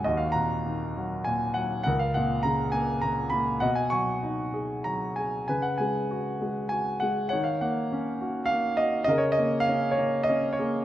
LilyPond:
<<
  \new Staff \with { instrumentName = "Grand piano" } { \time 3/4 \key des \mixolydian \tempo 4 = 100 << { ees''16 f''16 bes''4. aes''8 ges''8 | ges''16 f''16 ges''8 bes''8 aes''8 bes''8 ces'''8 | fis''16 gis''16 cis'''4. bes''8 gis''8 | aes''16 ges''16 aes''8 r4 aes''8 ges''8 |
ges''16 f''16 ges''8 r4 f''8 ees''8 | ees''16 des''16 ees''8 f''8 des''8 ees''8 des''8 | } \\ { ges'8 ges''4. r4 | bes'4. r4. | dis''8 gis''4. r4 | ces''4. r4. |
des''4. r4. | bes'4. r4 aes'8 | } >> }
  \new Staff \with { instrumentName = "Grand piano" } { \clef bass \time 3/4 \key des \mixolydian ees,8 bes,8 ees8 ges8 bes,8 ges8 | des,8 bes,8 des8 bes8 bes,8 bes8 | b,8 fis8 dis'8 gis'8 fis8 gis'8 | des8 aes8 ges'8 aes8 ges'8 aes8 |
ees8 bes8 des'8 ges'8 bes8 ges'8 | des8 bes8 des'8 bes8 des'8 bes8 | }
>>